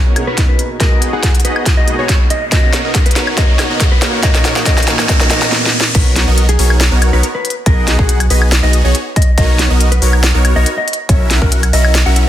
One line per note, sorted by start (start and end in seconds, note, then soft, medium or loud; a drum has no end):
0.00 0.13 B2 medium
0.00 0.13 A#3 medium
0.00 0.14 C#4 medium
0.00 0.15 D#4 medium
0.00 3.98 D#4 medium
0.00 5.48 F#4 medium
0.00 0.79 A#4 medium
0.00 0.79 C#5 medium
0.00 riser medium
0.06 0.25 B3 medium
0.06 0.25 D#4 medium
0.06 0.25 F#4 medium
0.06 0.25 A#4 medium
0.06 0.25 C#5 medium
0.15 0.35 B2 medium
0.15 0.35 A#3 medium
0.15 0.35 C#4 medium
0.15 0.36 G#4 medium
0.15 closed hi-hat medium
0.15 high woodblock medium
0.27 0.39 B3 loud
0.27 0.39 D#4 medium
0.27 0.39 F#4 medium
0.27 0.39 A#4 medium
0.27 0.40 B4 medium
0.27 0.39 C#5 loud
0.37 0.78 B2 medium
0.37 0.78 A#3 medium
0.37 0.78 C#4 medium
0.37 0.79 D#4 loud
0.37 kick medium
0.37 snare medium
0.37 closed hi-hat medium
0.49 0.68 B4 medium
0.59 closed hi-hat medium
0.79 0.89 B2 medium
0.79 0.90 G#3 medium
0.79 0.90 A#3 medium
0.79 1.10 B3 medium
0.79 1.10 D#4 medium
0.79 1.10 F#4 medium
0.79 2.50 G#4 medium
0.79 1.10 G#4 medium
0.79 0.90 G#4 loud
0.79 1.00 A#4 medium
0.79 2.50 D#5 medium
0.79 1.10 D#5 medium
0.79 kick medium
0.79 snare medium
0.79 closed hi-hat medium
1.02 closed hi-hat medium
1.13 1.32 B3 medium
1.13 1.32 D#4 medium
1.13 1.32 F#4 medium
1.13 1.32 G#4 medium
1.13 1.33 G#4 medium
1.13 1.32 F#5 loud
1.23 kick medium
1.23 snare medium
1.23 closed hi-hat medium
1.35 closed hi-hat soft
1.40 closed hi-hat medium
1.45 1.64 B3 medium
1.45 1.64 D#4 medium
1.45 1.64 F#4 medium
1.45 1.64 G#4 medium
1.45 1.64 B4 medium
1.45 1.64 D#5 loud
1.45 closed hi-hat medium
1.56 high woodblock medium
1.66 kick loud
1.66 snare medium
1.66 closed hi-hat medium
1.77 1.96 B3 medium
1.77 1.96 D#4 medium
1.77 1.96 F#4 medium
1.77 1.96 G#4 medium
1.77 1.90 D#5 medium
1.77 1.96 D#5 medium
1.86 2.48 B2 medium
1.86 2.49 G#3 medium
1.86 2.50 A#3 medium
1.86 2.50 A#4 medium
1.86 closed hi-hat medium
1.99 2.10 B3 loud
1.99 2.10 D#4 medium
1.99 2.10 F#4 loud
1.99 2.10 G#4 medium
1.99 2.10 C#5 loud
1.99 2.18 C#5 medium
2.09 kick medium
2.09 snare medium
2.09 closed hi-hat medium
2.30 2.44 D#5 medium
2.30 closed hi-hat medium
2.50 3.34 B2 medium
2.50 3.36 A#3 medium
2.50 2.82 B3 medium
2.50 3.36 C#4 medium
2.50 2.82 D#4 medium
2.50 2.82 F#4 medium
2.50 2.82 A#4 medium
2.50 4.00 A#4 medium
2.50 2.82 C#5 medium
2.50 5.49 C#5 medium
2.50 2.71 D#5 medium
2.50 kick medium
2.50 snare medium
2.50 closed hi-hat medium
2.54 3.37 D#4 medium
2.73 snare medium
2.73 closed hi-hat medium
2.84 3.03 B3 medium
2.84 3.03 D#4 medium
2.84 3.03 F#4 medium
2.84 3.03 A#4 medium
2.84 3.03 D#5 medium
2.95 kick loud
2.95 snare medium
2.95 closed hi-hat medium
3.06 3.32 B4 medium
3.06 closed hi-hat soft
3.11 closed hi-hat medium
3.16 3.35 B3 medium
3.16 3.35 D#4 medium
3.16 3.35 F#4 medium
3.16 3.35 A#4 medium
3.16 3.35 C#5 medium
3.16 snare medium
3.16 closed hi-hat medium
3.27 high woodblock medium
3.36 4.21 B2 medium
3.36 4.21 A#3 medium
3.36 3.68 B3 medium
3.36 4.22 C#4 medium
3.36 3.68 D#4 medium
3.36 4.23 D#4 medium
3.36 3.68 A#4 medium
3.36 3.68 C#5 medium
3.36 3.57 D#5 medium
3.36 kick loud
3.36 snare medium
3.36 closed hi-hat medium
3.59 snare medium
3.59 closed hi-hat medium
3.59 high woodblock medium
3.70 3.89 B3 medium
3.70 3.89 D#4 medium
3.70 3.89 F#4 medium
3.70 3.89 A#4 medium
3.70 3.89 D#5 loud
3.80 kick loud
3.80 snare medium
3.80 closed hi-hat medium
3.92 4.17 B4 medium
4.02 5.50 E3 medium
4.02 4.21 A#3 medium
4.02 5.50 A#3 medium
4.02 5.50 C#4 medium
4.02 4.21 D#4 medium
4.02 4.21 F#4 medium
4.02 4.21 A#4 medium
4.02 4.21 C#5 medium
4.02 snare medium
4.02 closed hi-hat medium
4.21 4.63 A#2 medium
4.21 4.64 A#3 medium
4.21 4.65 C#4 medium
4.21 4.66 D#4 medium
4.21 4.43 D#5 loud
4.21 kick loud
4.21 snare medium
4.21 closed hi-hat medium
4.35 snare medium
4.45 snare medium
4.45 closed hi-hat medium
4.56 4.65 A#3 medium
4.56 4.65 D#4 medium
4.56 4.65 F#4 medium
4.56 4.65 A#4 medium
4.56 4.65 D#5 loud
4.56 snare medium
4.64 5.06 A#2 medium
4.64 5.07 A#3 medium
4.64 4.96 A#3 medium
4.64 5.08 C#4 medium
4.64 4.96 D#4 medium
4.64 4.96 F#4 medium
4.64 4.96 A#4 medium
4.64 4.96 C#5 medium
4.64 4.86 D#5 loud
4.64 kick medium
4.64 snare loud
4.64 closed hi-hat medium
4.68 5.08 D#4 medium
4.77 snare medium
4.77 closed hi-hat medium
4.83 closed hi-hat medium
4.88 snare loud
4.88 closed hi-hat medium
4.99 5.07 A#3 medium
4.99 5.07 D#4 medium
4.99 5.07 F#4 medium
4.99 5.07 A#4 medium
4.99 5.07 D#5 loud
4.99 snare loud
4.99 high woodblock medium
5.07 5.27 A#2 medium
5.07 5.28 A#3 medium
5.07 5.29 C#4 medium
5.07 5.29 F#4 medium
5.07 5.29 D#5 loud
5.07 kick loud
5.07 snare loud
5.07 closed hi-hat medium
5.07 swell medium
5.11 5.30 D#4 medium
5.20 snare medium
5.29 5.49 A#2 medium
5.29 5.50 A#3 medium
5.29 5.51 C#4 medium
5.29 5.50 D#4 medium
5.29 5.51 D#4 medium
5.29 5.50 F#4 medium
5.29 5.50 A#4 medium
5.29 5.50 C#5 loud
5.29 5.50 D#5 loud
5.29 snare loud
5.29 closed hi-hat medium
5.42 snare medium
5.52 snare medium
5.66 snare medium
5.80 snare loud
5.95 6.25 B1 medium
5.95 6.25 B3 medium
5.95 6.25 D#4 medium
5.95 6.25 F#4 medium
5.95 6.25 A#4 medium
5.95 6.14 B4 loud
5.95 6.25 C#5 medium
5.95 kick loud
5.95 closed hi-hat medium
5.95 crash loud
6.16 snare medium
6.16 closed hi-hat medium
6.27 6.57 B1 loud
6.27 6.46 B3 medium
6.27 6.46 D#4 medium
6.27 6.46 F#4 medium
6.27 6.46 A#4 medium
6.27 6.46 D#5 loud
6.38 closed hi-hat medium
6.49 6.75 G#4 medium
6.49 closed hi-hat medium
6.59 6.89 B1 loud
6.59 6.78 B3 medium
6.59 6.78 D#4 medium
6.59 6.78 F#4 medium
6.59 6.78 A#4 medium
6.59 6.78 C#5 medium
6.59 open hi-hat loud
6.70 high woodblock medium
6.80 snare loud
6.80 closed hi-hat medium
6.92 7.11 B1 medium
6.92 7.10 B3 medium
6.92 7.10 D#4 medium
6.92 7.10 F#4 medium
6.92 7.10 A#4 medium
6.92 7.10 C#5 medium
7.02 closed hi-hat medium
7.02 high woodblock medium
7.13 7.22 B1 loud
7.13 7.24 B3 loud
7.13 7.25 D#4 loud
7.13 7.25 F#4 loud
7.13 7.24 A#4 medium
7.13 7.26 B4 medium
7.13 7.24 C#5 loud
7.23 closed hi-hat medium
7.35 7.54 B4 medium
7.45 closed hi-hat medium
7.50 closed hi-hat medium
7.66 7.97 B1 loud
7.66 7.96 B3 medium
7.66 7.96 D#4 medium
7.66 7.96 F#4 medium
7.66 7.96 G#4 medium
7.66 7.86 A#4 medium
7.66 7.96 D#5 loud
7.66 kick loud
7.66 closed hi-hat medium
7.88 snare medium
7.88 closed hi-hat medium
7.99 8.28 B1 loud
7.99 8.18 F#4 medium
7.99 8.18 G#4 medium
7.99 8.18 F#5 loud
7.99 kick medium
8.09 closed hi-hat medium
8.20 closed hi-hat medium
8.20 high woodblock medium
8.30 8.61 B1 loud
8.30 8.49 B3 medium
8.30 8.49 D#4 medium
8.30 8.49 F#4 medium
8.30 8.49 G#4 medium
8.30 8.50 B4 medium
8.30 8.49 D#5 loud
8.30 open hi-hat medium
8.42 high woodblock medium
8.52 snare loud
8.52 closed hi-hat medium
8.63 8.82 B1 medium
8.63 8.82 B3 medium
8.63 8.82 D#4 medium
8.63 8.82 F#4 medium
8.63 8.82 G#4 medium
8.63 8.76 D#5 medium
8.63 8.82 D#5 medium
8.73 closed hi-hat medium
8.84 8.94 B1 loud
8.84 8.96 B3 loud
8.84 8.96 D#4 medium
8.84 8.96 F#4 medium
8.84 8.96 G#4 loud
8.84 9.04 C#5 medium
8.84 8.96 C#5 loud
8.95 closed hi-hat medium
9.16 9.30 D#5 medium
9.16 kick loud
9.16 closed hi-hat medium
9.22 closed hi-hat medium
9.38 9.68 B1 loud
9.38 9.68 B3 medium
9.38 9.68 D#4 medium
9.38 9.68 F#4 medium
9.38 9.68 A#4 medium
9.38 9.68 C#5 loud
9.38 9.57 D#5 loud
9.38 kick loud
9.38 closed hi-hat medium
9.59 snare medium
9.59 closed hi-hat medium
9.70 10.00 B1 loud
9.70 9.89 B3 medium
9.70 9.89 D#4 medium
9.70 9.89 F#4 medium
9.70 9.89 A#4 medium
9.70 9.89 D#5 loud
9.81 closed hi-hat medium
9.92 10.17 B4 medium
9.92 closed hi-hat medium
10.02 10.32 B1 loud
10.02 10.21 B3 medium
10.02 10.21 D#4 medium
10.02 10.21 F#4 medium
10.02 10.21 A#4 medium
10.02 10.21 C#5 medium
10.02 open hi-hat medium
10.13 high woodblock medium
10.23 snare loud
10.23 closed hi-hat medium
10.35 10.54 B1 loud
10.35 10.53 B3 medium
10.35 10.53 D#4 medium
10.35 10.53 F#4 medium
10.35 10.53 A#4 medium
10.35 10.53 C#5 medium
10.45 closed hi-hat medium
10.45 high woodblock medium
10.56 10.65 B1 loud
10.56 10.67 B3 loud
10.56 10.67 D#4 loud
10.56 10.67 F#4 loud
10.56 10.67 A#4 loud
10.56 10.67 C#5 loud
10.56 10.69 D#5 medium
10.66 closed hi-hat medium
10.78 10.97 D#5 medium
10.88 closed hi-hat medium
10.93 closed hi-hat medium
11.09 11.39 B1 medium
11.09 11.39 C#4 medium
11.09 11.39 E4 medium
11.09 11.39 F#4 medium
11.09 11.39 A#4 medium
11.09 11.29 C#5 medium
11.09 11.39 E5 medium
11.09 kick loud
11.09 closed hi-hat medium
11.30 snare medium
11.30 closed hi-hat medium
11.42 11.71 B1 loud
11.42 11.60 C#4 medium
11.42 11.60 E4 medium
11.42 11.60 F#4 medium
11.42 11.60 A#4 medium
11.42 11.61 A#4 medium
11.42 11.60 F#5 loud
11.42 kick medium
11.52 closed hi-hat medium
11.63 closed hi-hat medium
11.63 high woodblock medium
11.73 12.04 B1 loud
11.73 11.92 C#4 medium
11.73 11.92 E4 medium
11.73 11.92 F#4 medium
11.73 11.92 A#4 medium
11.73 11.93 D#5 medium
11.73 11.92 E5 medium
11.73 open hi-hat medium
11.85 high woodblock medium
11.95 snare loud
11.95 closed hi-hat medium
12.06 12.25 B1 loud
12.06 12.25 C#4 medium
12.06 12.25 E4 medium
12.06 12.25 F#4 medium
12.06 12.25 A#4 medium
12.06 12.25 E5 medium
12.06 12.19 F#5 medium
12.16 closed hi-hat medium